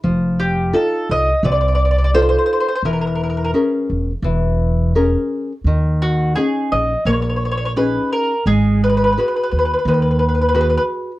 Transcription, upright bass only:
\new Staff \with { instrumentName = "Upright bass" } { \clef bass \time 4/4 \key gis \minor \tempo 4 = 86 f,,4. c,8 c,2 | e,,4. e,,8 e,,2 | dis,4. ais,,8 ais,,2 | gis,,4. dis,8 dis,2 | }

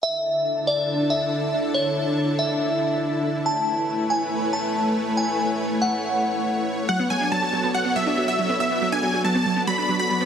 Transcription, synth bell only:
\new Staff \with { instrumentName = "Synth bell" } { \time 4/4 \key d \lydian \tempo 4 = 140 e''4. d''4 e''4. | cis''4. e''2~ e''8 | a''4. gis''4 a''4. | gis''4. fis''2~ fis''8 |
r1 | r1 | }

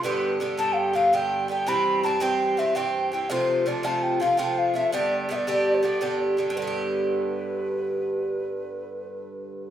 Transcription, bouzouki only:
\new Staff \with { instrumentName = "Bouzouki" } { \clef bass \time 9/8 \key g \mixolydian \tempo 4. = 111 <g, d b g'>4 <g, d b g'>8 <g, d b g'>4 <g, d b g'>8 <g, d b g'>4 <g, d b g'>8 | <g, e c' g'>4 <g, e c' g'>8 <g, e c' g'>4 <g, e c' g'>8 <g, e c' g'>4 <g, e c' g'>8 | <c f a f'>4 <c f a f'>8 <c f a f'>4 <c f a f'>8 <c f a f'>4 <c f a f'>8 | <g, d b g'>4 <g, d b g'>8 <g, d b g'>4 <g, d b g'>8 <g, d b g'>4 <g, d b g'>8 |
<g, d b g'>1~ <g, d b g'>8~ | <g, d b g'>1~ <g, d b g'>8 | }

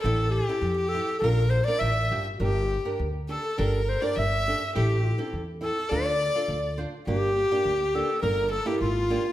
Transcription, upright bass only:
\new Staff \with { instrumentName = "Upright bass" } { \clef bass \time 2/4 \key g \dorian \tempo 4 = 103 a,,4 f,4 | bes,,4 a,,8 g,,8 | g,,4 d,4 | g,,4 g,,4 |
a,,4 e,4 | d,4 d,4 | g,,4 d,4 | g,,4 gis,,4 | }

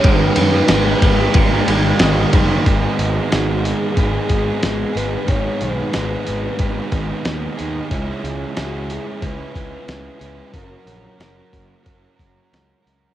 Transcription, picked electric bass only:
\new Staff \with { instrumentName = "Picked electric bass" } { \clef bass \time 4/4 \key gis \minor \tempo 4 = 91 gis,,8 fis,8 gis,,8 gis,,8 gis,,8 gis,,8 gis,,8 fis,,8 | gis,,8 gis,,8 gis,,4 gis,,8 gis,,8 gis,,8 gis,,8 | gis,,8 b,,8 gis,,8 gis,,8 gis,,8 gis,,8 dis,8 dis,8 | cis,8 cis,8 cis,4 cis,8 cis,8 cis,8 cis,8 |
fis,,8 ais,,8 fis,,8 fis,,8 fis,,8 fis,,8 cis,8 cis,8 | }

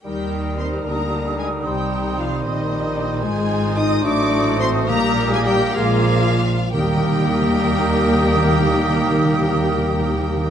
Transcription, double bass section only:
\new Staff \with { instrumentName = "Double bass section" } { \clef bass \time 6/8 \key ees \major \tempo 4. = 69 ees,4. d,4. | c,4. bes,,4. | aes,,4. a,,4. | bes,,4. bes,,4 r8 |
ees,2.~ | ees,2. | }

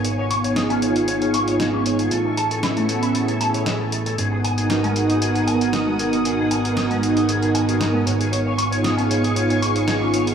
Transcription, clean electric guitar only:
\new Staff \with { instrumentName = "Clean electric guitar" } { \time 4/4 \key gis \dorian \tempo 4 = 116 cis''16 cis''16 cis'''16 cis''16 gis'16 cis'16 cis''16 gis'16 cis''16 cis''16 cis'''16 cis''16 gis'16 cis'16 cis''16 gis'16 | a'16 a'16 a''16 a'16 e'16 a16 a'16 e'16 a'16 a'16 a''16 cis''16 e''16 a'16 a'16 a'16 | gis'16 gis'16 gis''16 gis'16 dis'16 gis16 gis'16 dis'16 gis'16 gis'16 gis''16 gis'16 dis'16 gis16 gis'16 dis'16 | gis'16 gis'16 gis''16 gis'16 dis'16 gis16 gis'16 dis'16 gis'16 gis'16 gis''16 gis'16 dis'16 gis16 cis''16 gis'16 |
cis''16 cis''16 cis'''16 cis''16 gis'16 cis'16 cis''16 gis'16 cis''16 cis''16 cis'''16 cis''16 gis'16 cis'16 cis''16 gis'16 | }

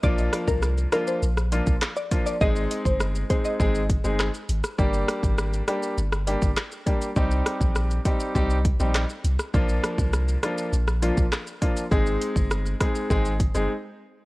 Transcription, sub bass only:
\new Staff \with { instrumentName = "Sub bass" } { \clef bass \time 4/4 \key bes \mixolydian \tempo 4 = 101 bes,,8 r16 c,8. r8 bes,,8. bes,,16 r4 | aes,,8 r16 g,,8. r8 aes,,8. g,,8 r16 aes,,16 r16 | g,,8 r16 aes,,8. r8 g,,8. g,,16 r4 | c,8 r16 bes,,8. r8 c,8. bes,,8 r16 c,16 r16 |
bes,,8 r16 c,8. r8 bes,,8. bes,,16 r4 | aes,,8 r16 g,,8. r8 aes,,8. g,,16 r4 | }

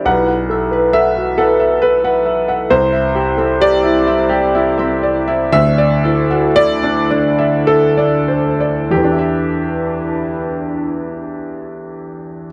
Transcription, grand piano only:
\new Staff \with { instrumentName = "Grand piano" } { \time 3/4 \key e \minor \tempo 4 = 60 << { fis''4 e''8 a'8 b'4 | c''4 d''2 | e''4 d''4 a'8 r8 | <e, e d' e' g' e''>2. | } \\ { b,,16 fis''16 a'16 b'16 a'16 fis'16 fis''16 e''16 a'16 fis''16 e''16 fis''16 | c,16 e''16 g'16 a'16 g'16 e'16 e''16 g'16 e'16 e''16 d''16 e''16 | d,16 d''16 e'16 fis'16 e'16 d'16 d''16 e''16 e'16 d''16 c''16 d''16 | r2. | } >> }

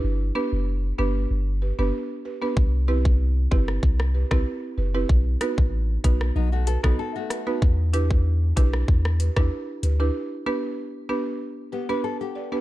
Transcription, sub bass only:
\new Staff \with { instrumentName = "Sub bass" } { \clef bass \time 4/4 \key g \major \tempo 4 = 95 g,,8 r16 fis,,8. g,,8 g,,8. g,,16 r4 | c,4. g,,8 c,8. c,16 r8 fis,,8 | b,,8 r16 a,,8. b,,8 b,,8. b,,16 r4 | e,4. b,,8 e,8. e,16 r8 d,8 |
r1 | }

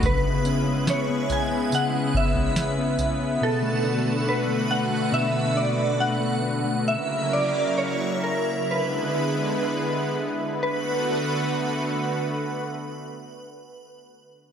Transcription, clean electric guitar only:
\new Staff \with { instrumentName = "Clean electric guitar" } { \time 4/4 \key b \dorian \tempo 4 = 68 cis16 b16 cis'16 b16 cis'16 b16 cis'16 b16 cis16 b16 cis'16 b16 cis'16 b16 cis'16 b16 | b,16 a16 d'16 a16 d'16 a16 d'16 a16 b,16 a16 d'16 a16 d'16 a16 d'16 a16 | r1 | r1 | }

